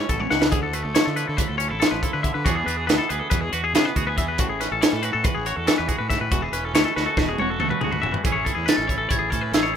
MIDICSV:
0, 0, Header, 1, 6, 480
1, 0, Start_track
1, 0, Key_signature, 3, "major"
1, 0, Tempo, 428878
1, 589, Time_signature, 9, 3, 24, 8
1, 10930, End_track
2, 0, Start_track
2, 0, Title_t, "Glockenspiel"
2, 0, Program_c, 0, 9
2, 9723, Note_on_c, 0, 93, 93
2, 10200, Note_on_c, 0, 92, 88
2, 10211, Note_off_c, 0, 93, 0
2, 10682, Note_on_c, 0, 88, 79
2, 10690, Note_off_c, 0, 92, 0
2, 10930, Note_off_c, 0, 88, 0
2, 10930, End_track
3, 0, Start_track
3, 0, Title_t, "Clean electric guitar"
3, 0, Program_c, 1, 27
3, 104, Note_on_c, 1, 69, 68
3, 226, Note_off_c, 1, 69, 0
3, 226, Note_on_c, 1, 73, 68
3, 341, Note_on_c, 1, 78, 75
3, 348, Note_off_c, 1, 73, 0
3, 459, Note_on_c, 1, 71, 70
3, 465, Note_off_c, 1, 78, 0
3, 573, Note_off_c, 1, 71, 0
3, 578, Note_on_c, 1, 68, 84
3, 698, Note_off_c, 1, 68, 0
3, 703, Note_on_c, 1, 69, 71
3, 822, Note_off_c, 1, 69, 0
3, 822, Note_on_c, 1, 71, 65
3, 928, Note_off_c, 1, 71, 0
3, 928, Note_on_c, 1, 69, 67
3, 1058, Note_off_c, 1, 69, 0
3, 1059, Note_on_c, 1, 73, 77
3, 1180, Note_on_c, 1, 69, 63
3, 1184, Note_off_c, 1, 73, 0
3, 1301, Note_on_c, 1, 71, 74
3, 1304, Note_off_c, 1, 69, 0
3, 1426, Note_off_c, 1, 71, 0
3, 1426, Note_on_c, 1, 69, 62
3, 1533, Note_off_c, 1, 69, 0
3, 1533, Note_on_c, 1, 71, 76
3, 1655, Note_off_c, 1, 71, 0
3, 1655, Note_on_c, 1, 69, 66
3, 1763, Note_off_c, 1, 69, 0
3, 1768, Note_on_c, 1, 73, 79
3, 1883, Note_off_c, 1, 73, 0
3, 1883, Note_on_c, 1, 69, 68
3, 1999, Note_off_c, 1, 69, 0
3, 2012, Note_on_c, 1, 69, 82
3, 2134, Note_off_c, 1, 69, 0
3, 2138, Note_on_c, 1, 71, 65
3, 2265, Note_off_c, 1, 71, 0
3, 2265, Note_on_c, 1, 69, 76
3, 2383, Note_off_c, 1, 69, 0
3, 2387, Note_on_c, 1, 71, 65
3, 2493, Note_off_c, 1, 71, 0
3, 2498, Note_on_c, 1, 76, 74
3, 2616, Note_off_c, 1, 76, 0
3, 2620, Note_on_c, 1, 71, 69
3, 2738, Note_on_c, 1, 66, 85
3, 2744, Note_off_c, 1, 71, 0
3, 2856, Note_off_c, 1, 66, 0
3, 2856, Note_on_c, 1, 68, 67
3, 2980, Note_on_c, 1, 71, 69
3, 2982, Note_off_c, 1, 68, 0
3, 3098, Note_off_c, 1, 71, 0
3, 3098, Note_on_c, 1, 68, 70
3, 3209, Note_off_c, 1, 68, 0
3, 3214, Note_on_c, 1, 71, 80
3, 3334, Note_off_c, 1, 71, 0
3, 3338, Note_on_c, 1, 69, 67
3, 3462, Note_off_c, 1, 69, 0
3, 3462, Note_on_c, 1, 71, 82
3, 3572, Note_off_c, 1, 71, 0
3, 3572, Note_on_c, 1, 69, 65
3, 3691, Note_off_c, 1, 69, 0
3, 3695, Note_on_c, 1, 71, 78
3, 3815, Note_off_c, 1, 71, 0
3, 3815, Note_on_c, 1, 68, 67
3, 3946, Note_off_c, 1, 68, 0
3, 3946, Note_on_c, 1, 71, 77
3, 4066, Note_off_c, 1, 71, 0
3, 4071, Note_on_c, 1, 68, 64
3, 4182, Note_off_c, 1, 68, 0
3, 4196, Note_on_c, 1, 68, 78
3, 4313, Note_off_c, 1, 68, 0
3, 4313, Note_on_c, 1, 71, 66
3, 4436, Note_off_c, 1, 71, 0
3, 4436, Note_on_c, 1, 68, 74
3, 4550, Note_off_c, 1, 68, 0
3, 4555, Note_on_c, 1, 71, 69
3, 4671, Note_off_c, 1, 71, 0
3, 4680, Note_on_c, 1, 76, 71
3, 4790, Note_off_c, 1, 76, 0
3, 4794, Note_on_c, 1, 71, 68
3, 4911, Note_off_c, 1, 71, 0
3, 4923, Note_on_c, 1, 66, 85
3, 5025, Note_off_c, 1, 66, 0
3, 5030, Note_on_c, 1, 68, 67
3, 5149, Note_off_c, 1, 68, 0
3, 5154, Note_on_c, 1, 71, 69
3, 5271, Note_off_c, 1, 71, 0
3, 5283, Note_on_c, 1, 69, 72
3, 5387, Note_off_c, 1, 69, 0
3, 5387, Note_on_c, 1, 73, 83
3, 5506, Note_off_c, 1, 73, 0
3, 5506, Note_on_c, 1, 69, 68
3, 5624, Note_off_c, 1, 69, 0
3, 5624, Note_on_c, 1, 71, 78
3, 5738, Note_off_c, 1, 71, 0
3, 5742, Note_on_c, 1, 69, 68
3, 5865, Note_off_c, 1, 69, 0
3, 5865, Note_on_c, 1, 71, 77
3, 5983, Note_on_c, 1, 68, 74
3, 5986, Note_off_c, 1, 71, 0
3, 6105, Note_off_c, 1, 68, 0
3, 6114, Note_on_c, 1, 73, 74
3, 6224, Note_off_c, 1, 73, 0
3, 6224, Note_on_c, 1, 69, 67
3, 6336, Note_off_c, 1, 69, 0
3, 6350, Note_on_c, 1, 69, 80
3, 6465, Note_off_c, 1, 69, 0
3, 6469, Note_on_c, 1, 71, 73
3, 6584, Note_off_c, 1, 71, 0
3, 6584, Note_on_c, 1, 68, 73
3, 6693, Note_off_c, 1, 68, 0
3, 6698, Note_on_c, 1, 71, 66
3, 6817, Note_off_c, 1, 71, 0
3, 6822, Note_on_c, 1, 76, 74
3, 6945, Note_off_c, 1, 76, 0
3, 6951, Note_on_c, 1, 71, 66
3, 7066, Note_on_c, 1, 66, 82
3, 7069, Note_off_c, 1, 71, 0
3, 7187, Note_off_c, 1, 66, 0
3, 7187, Note_on_c, 1, 68, 70
3, 7307, Note_on_c, 1, 71, 64
3, 7308, Note_off_c, 1, 68, 0
3, 7440, Note_off_c, 1, 71, 0
3, 7440, Note_on_c, 1, 69, 73
3, 7546, Note_off_c, 1, 69, 0
3, 7551, Note_on_c, 1, 73, 81
3, 7663, Note_off_c, 1, 73, 0
3, 7668, Note_on_c, 1, 69, 66
3, 7788, Note_off_c, 1, 69, 0
3, 7794, Note_on_c, 1, 71, 74
3, 7896, Note_off_c, 1, 71, 0
3, 7901, Note_on_c, 1, 69, 66
3, 8032, Note_off_c, 1, 69, 0
3, 8032, Note_on_c, 1, 71, 77
3, 8151, Note_off_c, 1, 71, 0
3, 8154, Note_on_c, 1, 68, 64
3, 8271, Note_off_c, 1, 68, 0
3, 8275, Note_on_c, 1, 73, 76
3, 8396, Note_off_c, 1, 73, 0
3, 8396, Note_on_c, 1, 69, 65
3, 8493, Note_off_c, 1, 69, 0
3, 8507, Note_on_c, 1, 69, 75
3, 8617, Note_off_c, 1, 69, 0
3, 8621, Note_on_c, 1, 71, 68
3, 8738, Note_on_c, 1, 68, 77
3, 8745, Note_off_c, 1, 71, 0
3, 8857, Note_off_c, 1, 68, 0
3, 8857, Note_on_c, 1, 71, 67
3, 8972, Note_on_c, 1, 76, 70
3, 8983, Note_off_c, 1, 71, 0
3, 9091, Note_on_c, 1, 71, 67
3, 9101, Note_off_c, 1, 76, 0
3, 9213, Note_off_c, 1, 71, 0
3, 9213, Note_on_c, 1, 68, 83
3, 9315, Note_on_c, 1, 73, 71
3, 9341, Note_off_c, 1, 68, 0
3, 9452, Note_off_c, 1, 73, 0
3, 9454, Note_on_c, 1, 69, 65
3, 9563, Note_off_c, 1, 69, 0
3, 9567, Note_on_c, 1, 68, 67
3, 9689, Note_on_c, 1, 71, 79
3, 9699, Note_off_c, 1, 68, 0
3, 9809, Note_off_c, 1, 71, 0
3, 9809, Note_on_c, 1, 69, 64
3, 9931, Note_off_c, 1, 69, 0
3, 9931, Note_on_c, 1, 73, 73
3, 10044, Note_off_c, 1, 73, 0
3, 10048, Note_on_c, 1, 69, 66
3, 10171, Note_off_c, 1, 69, 0
3, 10171, Note_on_c, 1, 73, 74
3, 10279, Note_off_c, 1, 73, 0
3, 10284, Note_on_c, 1, 68, 67
3, 10410, Note_off_c, 1, 68, 0
3, 10410, Note_on_c, 1, 69, 69
3, 10534, Note_off_c, 1, 69, 0
3, 10534, Note_on_c, 1, 71, 67
3, 10654, Note_off_c, 1, 71, 0
3, 10654, Note_on_c, 1, 69, 77
3, 10772, Note_off_c, 1, 69, 0
3, 10777, Note_on_c, 1, 73, 66
3, 10899, Note_off_c, 1, 73, 0
3, 10930, End_track
4, 0, Start_track
4, 0, Title_t, "Clean electric guitar"
4, 0, Program_c, 2, 27
4, 0, Note_on_c, 2, 57, 59
4, 0, Note_on_c, 2, 61, 60
4, 106, Note_on_c, 2, 47, 59
4, 329, Note_off_c, 2, 47, 0
4, 333, Note_on_c, 2, 49, 60
4, 581, Note_off_c, 2, 49, 0
4, 587, Note_on_c, 2, 50, 71
4, 589, Note_off_c, 2, 61, 0
4, 827, Note_off_c, 2, 57, 0
4, 840, Note_on_c, 2, 57, 56
4, 1062, Note_on_c, 2, 53, 59
4, 1307, Note_on_c, 2, 64, 58
4, 1534, Note_on_c, 2, 45, 61
4, 1768, Note_off_c, 2, 64, 0
4, 1772, Note_on_c, 2, 61, 60
4, 1906, Note_off_c, 2, 61, 0
4, 1906, Note_on_c, 2, 64, 46
4, 2011, Note_off_c, 2, 53, 0
4, 2024, Note_on_c, 2, 53, 67
4, 2266, Note_off_c, 2, 64, 0
4, 2288, Note_on_c, 2, 64, 57
4, 2498, Note_off_c, 2, 50, 0
4, 2500, Note_off_c, 2, 45, 0
4, 2512, Note_on_c, 2, 50, 76
4, 2717, Note_off_c, 2, 53, 0
4, 2721, Note_off_c, 2, 50, 0
4, 2739, Note_on_c, 2, 52, 78
4, 2741, Note_off_c, 2, 57, 0
4, 2745, Note_on_c, 2, 59, 60
4, 2747, Note_off_c, 2, 64, 0
4, 2752, Note_on_c, 2, 62, 57
4, 2759, Note_on_c, 2, 68, 68
4, 2979, Note_off_c, 2, 62, 0
4, 2993, Note_on_c, 2, 62, 59
4, 3218, Note_off_c, 2, 59, 0
4, 3222, Note_on_c, 2, 59, 60
4, 3483, Note_off_c, 2, 68, 0
4, 3487, Note_on_c, 2, 68, 65
4, 3710, Note_on_c, 2, 47, 65
4, 3944, Note_off_c, 2, 68, 0
4, 3948, Note_on_c, 2, 66, 66
4, 4079, Note_off_c, 2, 66, 0
4, 4079, Note_on_c, 2, 68, 56
4, 4194, Note_off_c, 2, 59, 0
4, 4198, Note_on_c, 2, 59, 67
4, 4428, Note_off_c, 2, 68, 0
4, 4432, Note_on_c, 2, 66, 63
4, 4565, Note_off_c, 2, 66, 0
4, 4565, Note_on_c, 2, 68, 58
4, 4656, Note_off_c, 2, 52, 0
4, 4660, Note_on_c, 2, 52, 77
4, 4669, Note_off_c, 2, 47, 0
4, 4881, Note_off_c, 2, 62, 0
4, 4905, Note_on_c, 2, 45, 74
4, 4916, Note_off_c, 2, 68, 0
4, 4939, Note_off_c, 2, 59, 0
4, 5152, Note_on_c, 2, 61, 62
4, 5379, Note_off_c, 2, 52, 0
4, 5384, Note_on_c, 2, 52, 60
4, 5649, Note_on_c, 2, 66, 60
4, 5857, Note_off_c, 2, 52, 0
4, 5857, Note_on_c, 2, 52, 60
4, 6099, Note_off_c, 2, 66, 0
4, 6112, Note_on_c, 2, 66, 64
4, 6335, Note_off_c, 2, 52, 0
4, 6335, Note_on_c, 2, 52, 68
4, 6567, Note_off_c, 2, 66, 0
4, 6580, Note_on_c, 2, 66, 60
4, 6821, Note_off_c, 2, 45, 0
4, 6834, Note_on_c, 2, 45, 73
4, 7035, Note_off_c, 2, 66, 0
4, 7042, Note_off_c, 2, 45, 0
4, 7067, Note_off_c, 2, 52, 0
4, 7072, Note_on_c, 2, 52, 77
4, 7317, Note_off_c, 2, 61, 0
4, 7317, Note_on_c, 2, 61, 60
4, 7565, Note_on_c, 2, 57, 57
4, 7799, Note_on_c, 2, 66, 62
4, 8042, Note_on_c, 2, 47, 63
4, 8274, Note_off_c, 2, 66, 0
4, 8298, Note_on_c, 2, 66, 66
4, 8512, Note_off_c, 2, 57, 0
4, 8526, Note_on_c, 2, 57, 58
4, 8764, Note_off_c, 2, 66, 0
4, 8777, Note_on_c, 2, 66, 61
4, 8979, Note_off_c, 2, 52, 0
4, 8992, Note_on_c, 2, 52, 67
4, 8996, Note_off_c, 2, 47, 0
4, 9222, Note_off_c, 2, 52, 0
4, 9227, Note_on_c, 2, 45, 69
4, 9228, Note_off_c, 2, 61, 0
4, 9236, Note_on_c, 2, 52, 60
4, 9237, Note_off_c, 2, 57, 0
4, 9242, Note_on_c, 2, 61, 55
4, 9244, Note_off_c, 2, 66, 0
4, 9247, Note_on_c, 2, 64, 56
4, 9256, Note_on_c, 2, 68, 64
4, 9462, Note_off_c, 2, 52, 0
4, 9467, Note_on_c, 2, 52, 59
4, 9719, Note_off_c, 2, 61, 0
4, 9723, Note_on_c, 2, 61, 49
4, 9966, Note_off_c, 2, 64, 0
4, 9970, Note_on_c, 2, 64, 58
4, 10180, Note_off_c, 2, 52, 0
4, 10184, Note_on_c, 2, 52, 61
4, 10433, Note_off_c, 2, 61, 0
4, 10437, Note_on_c, 2, 61, 57
4, 10678, Note_off_c, 2, 68, 0
4, 10692, Note_on_c, 2, 68, 67
4, 10919, Note_off_c, 2, 61, 0
4, 10930, Note_off_c, 2, 45, 0
4, 10930, Note_off_c, 2, 52, 0
4, 10930, Note_off_c, 2, 64, 0
4, 10930, Note_off_c, 2, 68, 0
4, 10930, End_track
5, 0, Start_track
5, 0, Title_t, "Fingered electric bass"
5, 0, Program_c, 3, 33
5, 101, Note_on_c, 3, 33, 92
5, 331, Note_off_c, 3, 33, 0
5, 351, Note_on_c, 3, 37, 81
5, 582, Note_off_c, 3, 37, 0
5, 582, Note_on_c, 3, 38, 100
5, 925, Note_off_c, 3, 38, 0
5, 948, Note_on_c, 3, 38, 80
5, 1061, Note_off_c, 3, 38, 0
5, 1200, Note_on_c, 3, 50, 76
5, 1421, Note_off_c, 3, 50, 0
5, 1443, Note_on_c, 3, 50, 88
5, 1549, Note_off_c, 3, 50, 0
5, 1671, Note_on_c, 3, 38, 81
5, 1896, Note_off_c, 3, 38, 0
5, 1919, Note_on_c, 3, 33, 75
5, 2027, Note_off_c, 3, 33, 0
5, 2148, Note_on_c, 3, 33, 71
5, 2261, Note_off_c, 3, 33, 0
5, 2394, Note_on_c, 3, 50, 81
5, 2617, Note_off_c, 3, 50, 0
5, 2626, Note_on_c, 3, 50, 90
5, 2740, Note_off_c, 3, 50, 0
5, 2747, Note_on_c, 3, 40, 98
5, 2974, Note_off_c, 3, 40, 0
5, 2983, Note_on_c, 3, 40, 85
5, 3212, Note_off_c, 3, 40, 0
5, 3227, Note_on_c, 3, 38, 92
5, 3341, Note_off_c, 3, 38, 0
5, 3473, Note_on_c, 3, 38, 80
5, 3584, Note_off_c, 3, 38, 0
5, 3708, Note_on_c, 3, 40, 90
5, 3934, Note_off_c, 3, 40, 0
5, 3950, Note_on_c, 3, 40, 80
5, 4182, Note_on_c, 3, 49, 95
5, 4199, Note_off_c, 3, 40, 0
5, 4298, Note_off_c, 3, 49, 0
5, 4432, Note_on_c, 3, 38, 96
5, 4657, Note_off_c, 3, 38, 0
5, 4673, Note_on_c, 3, 40, 81
5, 4910, Note_off_c, 3, 40, 0
5, 4910, Note_on_c, 3, 33, 102
5, 5249, Note_off_c, 3, 33, 0
5, 5278, Note_on_c, 3, 33, 81
5, 5386, Note_off_c, 3, 33, 0
5, 5515, Note_on_c, 3, 45, 81
5, 5738, Note_off_c, 3, 45, 0
5, 5759, Note_on_c, 3, 45, 88
5, 5867, Note_off_c, 3, 45, 0
5, 5999, Note_on_c, 3, 33, 82
5, 6220, Note_off_c, 3, 33, 0
5, 6234, Note_on_c, 3, 40, 81
5, 6344, Note_off_c, 3, 40, 0
5, 6483, Note_on_c, 3, 40, 75
5, 6589, Note_off_c, 3, 40, 0
5, 6719, Note_on_c, 3, 45, 78
5, 6940, Note_off_c, 3, 45, 0
5, 6949, Note_on_c, 3, 45, 94
5, 7062, Note_off_c, 3, 45, 0
5, 7070, Note_on_c, 3, 28, 98
5, 7290, Note_off_c, 3, 28, 0
5, 7297, Note_on_c, 3, 28, 83
5, 7529, Note_off_c, 3, 28, 0
5, 7541, Note_on_c, 3, 38, 91
5, 7658, Note_off_c, 3, 38, 0
5, 7798, Note_on_c, 3, 38, 80
5, 7907, Note_off_c, 3, 38, 0
5, 8019, Note_on_c, 3, 28, 89
5, 8250, Note_off_c, 3, 28, 0
5, 8276, Note_on_c, 3, 28, 83
5, 8513, Note_off_c, 3, 28, 0
5, 8513, Note_on_c, 3, 37, 90
5, 8625, Note_off_c, 3, 37, 0
5, 8758, Note_on_c, 3, 38, 90
5, 8981, Note_off_c, 3, 38, 0
5, 9001, Note_on_c, 3, 28, 82
5, 9109, Note_off_c, 3, 28, 0
5, 9236, Note_on_c, 3, 33, 88
5, 9460, Note_off_c, 3, 33, 0
5, 9583, Note_on_c, 3, 40, 82
5, 9700, Note_off_c, 3, 40, 0
5, 9826, Note_on_c, 3, 33, 81
5, 10168, Note_off_c, 3, 33, 0
5, 10192, Note_on_c, 3, 33, 84
5, 10418, Note_off_c, 3, 33, 0
5, 10437, Note_on_c, 3, 45, 92
5, 10646, Note_off_c, 3, 45, 0
5, 10653, Note_on_c, 3, 33, 90
5, 10930, Note_off_c, 3, 33, 0
5, 10930, End_track
6, 0, Start_track
6, 0, Title_t, "Drums"
6, 102, Note_on_c, 9, 42, 63
6, 105, Note_on_c, 9, 36, 71
6, 214, Note_off_c, 9, 42, 0
6, 217, Note_off_c, 9, 36, 0
6, 220, Note_on_c, 9, 48, 53
6, 332, Note_off_c, 9, 48, 0
6, 345, Note_on_c, 9, 38, 67
6, 457, Note_off_c, 9, 38, 0
6, 467, Note_on_c, 9, 38, 99
6, 579, Note_off_c, 9, 38, 0
6, 579, Note_on_c, 9, 42, 82
6, 586, Note_on_c, 9, 36, 105
6, 691, Note_off_c, 9, 42, 0
6, 698, Note_off_c, 9, 36, 0
6, 820, Note_on_c, 9, 42, 67
6, 932, Note_off_c, 9, 42, 0
6, 1064, Note_on_c, 9, 42, 95
6, 1073, Note_on_c, 9, 38, 112
6, 1176, Note_off_c, 9, 42, 0
6, 1185, Note_off_c, 9, 38, 0
6, 1305, Note_on_c, 9, 42, 62
6, 1417, Note_off_c, 9, 42, 0
6, 1547, Note_on_c, 9, 36, 93
6, 1547, Note_on_c, 9, 42, 93
6, 1659, Note_off_c, 9, 36, 0
6, 1659, Note_off_c, 9, 42, 0
6, 1788, Note_on_c, 9, 42, 66
6, 1900, Note_off_c, 9, 42, 0
6, 2033, Note_on_c, 9, 42, 90
6, 2042, Note_on_c, 9, 38, 102
6, 2144, Note_off_c, 9, 42, 0
6, 2153, Note_off_c, 9, 38, 0
6, 2270, Note_on_c, 9, 36, 72
6, 2275, Note_on_c, 9, 42, 64
6, 2381, Note_off_c, 9, 36, 0
6, 2387, Note_off_c, 9, 42, 0
6, 2509, Note_on_c, 9, 36, 73
6, 2509, Note_on_c, 9, 42, 58
6, 2621, Note_off_c, 9, 36, 0
6, 2621, Note_off_c, 9, 42, 0
6, 2750, Note_on_c, 9, 36, 102
6, 2754, Note_on_c, 9, 42, 84
6, 2862, Note_off_c, 9, 36, 0
6, 2865, Note_off_c, 9, 42, 0
6, 2998, Note_on_c, 9, 42, 63
6, 3109, Note_off_c, 9, 42, 0
6, 3235, Note_on_c, 9, 42, 84
6, 3244, Note_on_c, 9, 38, 110
6, 3347, Note_off_c, 9, 42, 0
6, 3356, Note_off_c, 9, 38, 0
6, 3470, Note_on_c, 9, 42, 64
6, 3582, Note_off_c, 9, 42, 0
6, 3704, Note_on_c, 9, 42, 87
6, 3710, Note_on_c, 9, 36, 96
6, 3815, Note_off_c, 9, 42, 0
6, 3822, Note_off_c, 9, 36, 0
6, 3947, Note_on_c, 9, 42, 61
6, 4059, Note_off_c, 9, 42, 0
6, 4194, Note_on_c, 9, 42, 91
6, 4203, Note_on_c, 9, 38, 106
6, 4306, Note_off_c, 9, 42, 0
6, 4315, Note_off_c, 9, 38, 0
6, 4433, Note_on_c, 9, 42, 69
6, 4435, Note_on_c, 9, 36, 73
6, 4545, Note_off_c, 9, 42, 0
6, 4547, Note_off_c, 9, 36, 0
6, 4674, Note_on_c, 9, 36, 72
6, 4674, Note_on_c, 9, 42, 66
6, 4785, Note_off_c, 9, 42, 0
6, 4786, Note_off_c, 9, 36, 0
6, 4905, Note_on_c, 9, 42, 92
6, 4913, Note_on_c, 9, 36, 99
6, 5017, Note_off_c, 9, 42, 0
6, 5025, Note_off_c, 9, 36, 0
6, 5157, Note_on_c, 9, 42, 72
6, 5166, Note_on_c, 9, 38, 31
6, 5269, Note_off_c, 9, 42, 0
6, 5278, Note_off_c, 9, 38, 0
6, 5398, Note_on_c, 9, 42, 96
6, 5407, Note_on_c, 9, 38, 112
6, 5510, Note_off_c, 9, 42, 0
6, 5519, Note_off_c, 9, 38, 0
6, 5627, Note_on_c, 9, 42, 65
6, 5739, Note_off_c, 9, 42, 0
6, 5866, Note_on_c, 9, 42, 93
6, 5873, Note_on_c, 9, 36, 106
6, 5977, Note_off_c, 9, 42, 0
6, 5984, Note_off_c, 9, 36, 0
6, 6110, Note_on_c, 9, 42, 68
6, 6222, Note_off_c, 9, 42, 0
6, 6349, Note_on_c, 9, 42, 88
6, 6358, Note_on_c, 9, 38, 108
6, 6461, Note_off_c, 9, 42, 0
6, 6470, Note_off_c, 9, 38, 0
6, 6587, Note_on_c, 9, 42, 63
6, 6590, Note_on_c, 9, 36, 66
6, 6699, Note_off_c, 9, 42, 0
6, 6702, Note_off_c, 9, 36, 0
6, 6831, Note_on_c, 9, 36, 67
6, 6834, Note_on_c, 9, 42, 62
6, 6843, Note_on_c, 9, 38, 30
6, 6943, Note_off_c, 9, 36, 0
6, 6946, Note_off_c, 9, 42, 0
6, 6955, Note_off_c, 9, 38, 0
6, 7068, Note_on_c, 9, 42, 85
6, 7069, Note_on_c, 9, 36, 101
6, 7179, Note_off_c, 9, 42, 0
6, 7181, Note_off_c, 9, 36, 0
6, 7309, Note_on_c, 9, 42, 58
6, 7421, Note_off_c, 9, 42, 0
6, 7550, Note_on_c, 9, 42, 82
6, 7559, Note_on_c, 9, 38, 113
6, 7662, Note_off_c, 9, 42, 0
6, 7671, Note_off_c, 9, 38, 0
6, 7800, Note_on_c, 9, 38, 52
6, 7912, Note_off_c, 9, 38, 0
6, 8027, Note_on_c, 9, 36, 99
6, 8033, Note_on_c, 9, 38, 64
6, 8139, Note_off_c, 9, 36, 0
6, 8145, Note_off_c, 9, 38, 0
6, 8264, Note_on_c, 9, 48, 72
6, 8376, Note_off_c, 9, 48, 0
6, 8504, Note_on_c, 9, 47, 77
6, 8615, Note_off_c, 9, 47, 0
6, 8627, Note_on_c, 9, 45, 69
6, 8739, Note_off_c, 9, 45, 0
6, 8745, Note_on_c, 9, 45, 83
6, 8856, Note_off_c, 9, 45, 0
6, 8870, Note_on_c, 9, 43, 68
6, 8982, Note_off_c, 9, 43, 0
6, 8991, Note_on_c, 9, 43, 88
6, 9103, Note_off_c, 9, 43, 0
6, 9111, Note_on_c, 9, 43, 84
6, 9223, Note_off_c, 9, 43, 0
6, 9229, Note_on_c, 9, 42, 87
6, 9231, Note_on_c, 9, 36, 104
6, 9341, Note_off_c, 9, 42, 0
6, 9343, Note_off_c, 9, 36, 0
6, 9473, Note_on_c, 9, 36, 65
6, 9475, Note_on_c, 9, 42, 68
6, 9584, Note_off_c, 9, 36, 0
6, 9587, Note_off_c, 9, 42, 0
6, 9713, Note_on_c, 9, 42, 89
6, 9722, Note_on_c, 9, 38, 105
6, 9825, Note_off_c, 9, 42, 0
6, 9834, Note_off_c, 9, 38, 0
6, 9953, Note_on_c, 9, 36, 66
6, 9959, Note_on_c, 9, 42, 63
6, 10065, Note_off_c, 9, 36, 0
6, 10071, Note_off_c, 9, 42, 0
6, 10189, Note_on_c, 9, 42, 89
6, 10192, Note_on_c, 9, 36, 93
6, 10301, Note_off_c, 9, 42, 0
6, 10304, Note_off_c, 9, 36, 0
6, 10432, Note_on_c, 9, 36, 62
6, 10436, Note_on_c, 9, 42, 63
6, 10544, Note_off_c, 9, 36, 0
6, 10547, Note_off_c, 9, 42, 0
6, 10671, Note_on_c, 9, 42, 84
6, 10680, Note_on_c, 9, 38, 104
6, 10783, Note_off_c, 9, 42, 0
6, 10792, Note_off_c, 9, 38, 0
6, 10930, End_track
0, 0, End_of_file